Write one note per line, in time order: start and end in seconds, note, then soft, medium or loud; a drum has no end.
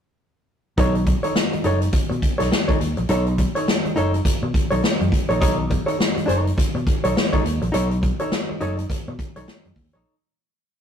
0.78 1.13 B1 loud
0.78 1.01 D#4 medium
0.78 0.96 A4 medium
0.78 0.95 C#5 loud
0.78 kick loud
0.78 closed hi-hat medium
0.95 muted hollow-body jazz guitar stroke soft
0.95 closed hi-hat soft
1.07 muted hollow-body jazz guitar stroke soft
1.07 kick medium
1.07 closed hi-hat medium
1.23 1.34 D#4 soft
1.23 1.34 A4 soft
1.23 1.35 C#5 medium
1.23 closed hi-hat medium
1.35 muted hollow-body jazz guitar stroke soft
1.35 snare loud
1.52 muted hollow-body jazz guitar stroke soft
1.52 muted fingered electric bass stroke soft
1.52 closed hi-hat soft
1.64 1.87 F#1 medium
1.64 1.87 D#4 medium
1.64 1.81 A4 medium
1.64 1.80 C#5 medium
1.64 closed hi-hat medium
1.81 muted hollow-body jazz guitar stroke soft
1.81 closed hi-hat medium
1.92 muted hollow-body jazz guitar stroke soft
1.92 muted fingered electric bass stroke soft
1.92 kick loud
1.92 closed hi-hat medium
2.10 2.20 B2 loud
2.10 muted hollow-body jazz guitar stroke medium
2.10 closed hi-hat soft
2.22 kick medium
2.22 closed hi-hat medium
2.38 2.49 B1 medium
2.38 2.50 D#4 medium
2.38 2.50 A4 medium
2.38 2.50 C#5 medium
2.38 snare soft
2.38 closed hi-hat medium
2.51 muted hollow-body jazz guitar stroke soft
2.51 snare loud
2.68 2.78 D#4 medium
2.68 2.79 A4 medium
2.68 2.79 C#5 medium
2.68 kick loud
2.68 closed hi-hat soft
2.79 2.94 D#2 medium
2.79 muted hollow-body jazz guitar stroke soft
2.79 closed hi-hat medium
2.97 3.07 A#1 medium
2.97 muted hollow-body jazz guitar stroke soft
2.97 closed hi-hat soft
3.09 3.45 B1 loud
3.09 3.32 D#4 medium
3.09 3.27 A4 medium
3.09 3.26 C#5 medium
3.09 closed hi-hat medium
3.26 muted hollow-body jazz guitar stroke soft
3.26 closed hi-hat soft
3.38 muted hollow-body jazz guitar stroke soft
3.38 kick medium
3.38 closed hi-hat medium
3.55 3.67 D#4 medium
3.55 3.68 A4 medium
3.55 3.68 C#5 medium
3.55 closed hi-hat medium
3.68 muted hollow-body jazz guitar stroke soft
3.68 snare loud
3.85 muted fingered electric bass stroke soft
3.85 muted hollow-body jazz guitar stroke soft
3.85 closed hi-hat soft
3.96 4.19 F#1 medium
3.96 4.19 D#4 loud
3.96 4.15 A4 medium
3.96 4.13 C#5 loud
3.96 closed hi-hat medium
4.14 muted hollow-body jazz guitar stroke soft
4.14 closed hi-hat soft
4.25 muted fingered electric bass stroke soft
4.25 muted hollow-body jazz guitar stroke soft
4.25 kick loud
4.25 closed hi-hat loud
4.42 4.51 B2 medium
4.42 muted hollow-body jazz guitar stroke soft
4.54 kick loud
4.54 closed hi-hat medium
4.71 4.81 B1 medium
4.71 4.82 D#4 medium
4.71 4.82 A4 medium
4.71 4.83 C#5 medium
4.71 closed hi-hat medium
4.83 muted hollow-body jazz guitar stroke soft
4.83 muted fingered electric bass stroke soft
4.83 snare loud
5.01 5.10 F#2 medium
5.01 muted hollow-body jazz guitar stroke medium
5.01 closed hi-hat soft
5.12 kick medium
5.12 closed hi-hat medium
5.29 5.42 A#1 medium
5.29 5.39 D#4 medium
5.29 5.40 A4 medium
5.29 5.41 C#5 medium
5.29 closed hi-hat soft
5.41 5.77 B1 loud
5.41 5.64 D#4 medium
5.41 5.58 A4 medium
5.41 5.57 C#5 medium
5.41 kick loud
5.41 closed hi-hat loud
5.58 muted hollow-body jazz guitar stroke soft
5.70 muted hollow-body jazz guitar stroke soft
5.70 kick medium
5.70 closed hi-hat medium
5.86 5.96 D#4 medium
5.86 5.97 A4 medium
5.86 5.98 C#5 medium
5.86 closed hi-hat medium
5.98 muted hollow-body jazz guitar stroke soft
5.98 snare loud
6.15 muted hollow-body jazz guitar stroke soft
6.15 muted fingered electric bass stroke medium
6.15 closed hi-hat soft
6.26 6.50 F#1 medium
6.26 6.50 D#4 medium
6.26 6.45 A4 medium
6.26 6.44 C#5 medium
6.26 closed hi-hat medium
6.45 muted hollow-body jazz guitar stroke medium
6.45 closed hi-hat soft
6.57 muted hollow-body jazz guitar stroke soft
6.57 muted fingered electric bass stroke soft
6.57 kick loud
6.57 closed hi-hat loud
6.75 6.84 B2 medium
6.75 muted hollow-body jazz guitar stroke soft
6.75 closed hi-hat soft
6.87 kick loud
6.87 closed hi-hat medium
7.04 7.13 B1 loud
7.04 7.15 D#4 medium
7.04 7.15 A4 medium
7.04 7.15 C#5 medium
7.04 closed hi-hat medium
7.16 muted hollow-body jazz guitar stroke soft
7.16 snare loud
7.33 7.43 D#4 medium
7.33 7.44 A4 medium
7.33 7.44 C#5 medium
7.33 kick medium
7.33 closed hi-hat soft
7.44 7.58 D#2 loud
7.44 muted hollow-body jazz guitar stroke soft
7.44 closed hi-hat medium
7.62 7.71 A#1 medium
7.62 muted hollow-body jazz guitar stroke soft
7.62 closed hi-hat soft
7.72 8.10 B1 loud
7.72 7.96 D#4 medium
7.72 7.90 A4 medium
7.72 7.89 C#5 medium
7.72 closed hi-hat medium
7.90 muted hollow-body jazz guitar stroke soft
7.90 closed hi-hat soft
8.02 muted hollow-body jazz guitar stroke soft
8.02 kick medium
8.02 closed hi-hat medium
8.19 8.31 D#4 medium
8.19 8.32 A4 medium
8.19 8.32 C#5 medium
8.19 closed hi-hat medium
8.32 muted hollow-body jazz guitar stroke soft
8.32 snare loud
8.49 muted hollow-body jazz guitar stroke soft
8.49 muted fingered electric bass stroke soft
8.61 8.83 F#1 medium
8.61 8.84 D#4 medium
8.61 8.78 A4 medium
8.61 8.76 C#5 medium
8.61 closed hi-hat medium
8.77 muted hollow-body jazz guitar stroke medium
8.77 closed hi-hat medium
8.90 muted fingered electric bass stroke soft
8.90 muted hollow-body jazz guitar stroke soft
8.90 kick loud
8.90 closed hi-hat loud
9.08 9.17 B2 loud
9.08 muted hollow-body jazz guitar stroke medium
9.19 kick loud
9.19 closed hi-hat medium
9.36 9.45 B1 medium
9.36 9.46 D#4 medium
9.36 9.47 A4 medium
9.36 9.48 C#5 medium
9.36 closed hi-hat medium
9.48 muted hollow-body jazz guitar stroke soft
9.48 snare loud
9.65 9.74 F#2 medium
9.65 muted hollow-body jazz guitar stroke soft
9.65 closed hi-hat soft
9.76 9.90 D#2 medium
9.76 kick medium
9.76 open hi-hat medium
9.93 10.03 A#1 medium
9.93 10.15 D#4 medium
9.93 10.14 A4 medium
9.93 10.14 C#5 medium
9.93 closed hi-hat soft